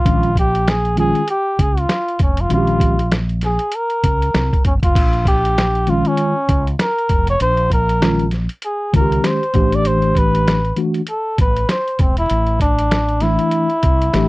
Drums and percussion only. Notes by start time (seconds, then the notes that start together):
0.06 kick, closed hi-hat
0.23 closed hi-hat
0.36 kick, closed hi-hat
0.55 closed hi-hat
0.68 snare, closed hi-hat
0.85 closed hi-hat
0.97 closed hi-hat
1.15 closed hi-hat
1.28 closed hi-hat
1.59 kick, closed hi-hat
1.77 closed hi-hat
1.89 snare, closed hi-hat
2.08 closed hi-hat
2.19 kick, closed hi-hat
2.37 closed hi-hat
2.50 closed hi-hat
2.67 closed hi-hat
2.80 kick, closed hi-hat
2.99 closed hi-hat
3.12 snare, closed hi-hat
3.29 closed hi-hat
3.41 snare, closed hi-hat
3.59 closed hi-hat
3.72 closed hi-hat
3.90 closed hi-hat
4.04 kick, closed hi-hat
4.22 closed hi-hat
4.34 snare, closed hi-hat
4.53 kick, closed hi-hat
4.65 kick, closed hi-hat
4.83 kick, closed hi-hat
4.95 kick, closed hi-hat, crash
5.13 closed hi-hat
5.25 kick, closed hi-hat
5.45 closed hi-hat
5.58 snare, closed hi-hat
5.75 closed hi-hat
5.87 closed hi-hat
6.05 closed hi-hat
6.17 closed hi-hat
6.49 kick, closed hi-hat
6.67 closed hi-hat
6.79 snare, closed hi-hat
6.99 closed hi-hat
7.09 kick, closed hi-hat
7.27 closed hi-hat
7.40 closed hi-hat
7.57 closed hi-hat
7.70 kick, closed hi-hat
7.89 closed hi-hat
8.02 snare, closed hi-hat
8.19 closed hi-hat
8.31 snare, closed hi-hat
8.49 closed hi-hat
8.62 closed hi-hat
8.94 kick, closed hi-hat
9.12 closed hi-hat
9.24 snare, closed hi-hat
9.43 closed hi-hat
9.54 kick, closed hi-hat
9.72 closed hi-hat
9.85 closed hi-hat
10.02 closed hi-hat
10.15 kick, closed hi-hat
10.35 closed hi-hat
10.48 snare, closed hi-hat
10.65 closed hi-hat
10.77 closed hi-hat
10.94 closed hi-hat
11.07 closed hi-hat
11.38 kick, closed hi-hat
11.57 closed hi-hat
11.69 snare, closed hi-hat
11.88 closed hi-hat
11.99 kick, closed hi-hat
12.17 closed hi-hat
12.30 closed hi-hat
12.47 closed hi-hat
12.60 kick, closed hi-hat
12.79 closed hi-hat
12.91 snare, closed hi-hat
13.09 closed hi-hat
13.20 snare, closed hi-hat
13.39 closed hi-hat
13.51 closed hi-hat
13.70 closed hi-hat
13.83 kick, closed hi-hat
14.02 closed hi-hat
14.14 snare, closed hi-hat